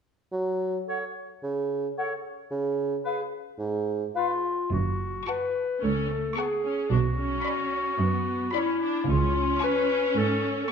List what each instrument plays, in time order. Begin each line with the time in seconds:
0.31 bassoon F#3
0.88 clarinet A4, oboe C#5, flute section F#5
1.43 bassoon C#3
1.98 clarinet A4, oboe C#5, flute section F#5
2.51 bassoon C#3
3.05 clarinet G#4, oboe B4, flute section F5
3.58 bassoon G#2
4.15 clarinet F4, oboe B4, flute section F5
4.71 double bass section F#1, cello section F#2, clarinet F#4
5.26 clarinet B4, violin section F#5 A5 C#6
5.81 cello section C#2, viola section C#4, clarinet A4
6.09 viola section A3
6.36 viola section B3, clarinet G#4, violin section F#5 A5 C#6
6.63 viola section C#4
6.89 double bass section B1, cello section B2, viola section D4, clarinet F#4
7.16 viola section C#4
7.44 violin section D5 B5
7.99 cello section F#2, viola section B3
8.53 viola section C#4, clarinet E4, violin section D5 B5
8.81 viola section D4
9.08 double bass section C#2, cello section C#3, viola section C#4, clarinet F4
9.61 clarinet B4, violin section G#5 C#6
10.16 cello section G#2, clarinet A4
10.64 clarinet A4